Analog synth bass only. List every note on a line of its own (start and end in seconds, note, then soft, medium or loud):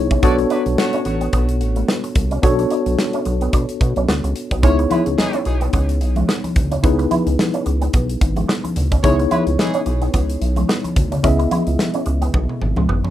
0.00 0.18 C2 medium
0.23 0.46 B1 loud
0.66 0.76 B1 medium
1.06 1.29 A1 medium
1.33 1.62 B1 medium
1.61 1.84 A1 medium
2.16 2.39 C2 medium
2.43 2.66 B1 loud
2.86 2.96 B1 loud
3.26 3.49 B1 medium
3.53 3.66 B2 loud
3.81 3.94 B2 loud
3.97 4.07 B1 medium
4.08 4.21 D2 medium
4.24 4.34 C#2 medium
4.51 4.65 B1 medium
4.63 4.86 C#2 loud
5.06 5.16 C#2 loud
5.46 5.69 B1 medium
5.73 6.03 C#2 loud
6.01 6.24 B1 medium
6.56 6.79 D2 loud
6.84 7.07 C#2 loud
7.27 7.37 C#2 loud
7.66 7.89 C#2 medium
7.94 8.17 B1 medium
8.21 8.44 G#1 loud
8.77 8.99 D2 medium
9.04 9.27 C#2 loud
9.47 9.57 C#2 loud
9.86 10.09 B1 loud
10.14 10.37 C#2 medium
10.41 10.64 B1 medium
10.96 11.19 D2 medium
11.24 11.47 C#2 loud
11.67 11.77 C#2 loud
12.07 12.30 C#2 loud
12.34 12.47 B1 loud
12.62 12.74 G#1 medium
12.77 12.87 C#2 medium
12.89 13.02 G#1 medium